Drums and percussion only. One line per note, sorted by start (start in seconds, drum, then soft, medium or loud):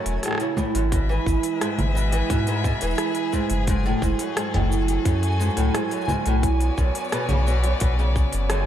0.06 open hi-hat soft
0.06 shaker soft
0.23 cross-stick soft
0.23 open hi-hat medium
0.23 shaker soft
0.26 cross-stick soft
0.28 cross-stick medium
0.31 cross-stick medium
0.33 cross-stick medium
0.35 cross-stick medium
0.38 cross-stick medium
0.38 open hi-hat soft
0.38 shaker soft
0.57 kick medium
0.57 low conga medium
0.57 shaker medium
0.75 open hi-hat soft
0.75 shaker soft
0.92 kick loud
0.92 open hi-hat medium
0.92 shaker soft
1.11 shaker soft
1.26 kick medium
1.26 shaker medium
1.43 open hi-hat soft
1.43 shaker soft
1.61 cross-stick medium
1.61 open hi-hat medium
1.61 shaker soft
1.79 open hi-hat soft
1.79 low conga medium
1.97 shaker medium
2.12 open hi-hat soft
2.12 shaker soft
2.30 kick loud
2.30 open hi-hat medium
2.30 shaker soft
2.47 open hi-hat soft
2.47 shaker soft
2.64 kick medium
2.64 shaker medium
2.81 open hi-hat soft
2.81 shaker soft
2.91 shaker soft
2.95 cross-stick medium
2.95 open hi-hat medium
2.95 shaker soft
2.99 shaker soft
3.07 shaker soft
3.12 open hi-hat soft
3.12 shaker soft
3.15 shaker soft
3.33 kick medium
3.33 shaker medium
3.50 open hi-hat soft
3.50 shaker soft
3.67 kick loud
3.67 open hi-hat medium
3.67 shaker soft
3.86 shaker soft
4.02 kick medium
4.02 shaker medium
4.19 open hi-hat soft
4.19 shaker soft
4.37 cross-stick loud
4.37 open hi-hat medium
4.37 shaker soft
4.54 open hi-hat soft
4.54 low conga medium
4.54 shaker soft
4.72 shaker medium
4.88 open hi-hat soft
4.88 shaker soft
5.05 kick loud
5.05 open hi-hat medium
5.05 shaker soft
5.23 open hi-hat soft
5.23 shaker soft
5.32 shaker soft
5.41 shaker medium
5.50 shaker soft
5.57 open hi-hat soft
5.57 shaker soft
5.75 cross-stick loud
5.75 open hi-hat medium
5.75 shaker soft
5.91 open hi-hat soft
5.91 shaker soft
5.97 shaker soft
6.01 shaker soft
6.05 low conga medium
6.05 shaker soft
6.09 kick medium
6.09 shaker medium
6.26 open hi-hat soft
6.26 shaker soft
6.43 kick loud
6.43 open hi-hat medium
6.43 shaker soft
6.60 open hi-hat soft
6.60 shaker soft
6.78 kick medium
6.78 shaker medium
6.95 open hi-hat soft
6.95 shaker soft
7.00 shaker soft
7.04 shaker soft
7.09 cross-stick medium
7.09 open hi-hat medium
7.09 shaker soft
7.13 shaker soft
7.22 shaker soft
7.26 open hi-hat soft
7.26 low conga medium
7.26 shaker soft
7.30 shaker soft
7.47 shaker medium
7.64 open hi-hat soft
7.80 kick loud
7.80 open hi-hat medium
7.80 shaker soft
7.99 shaker soft
8.16 kick loud
8.16 shaker medium
8.33 open hi-hat soft
8.33 shaker soft
8.50 cross-stick loud
8.50 open hi-hat medium
8.50 shaker soft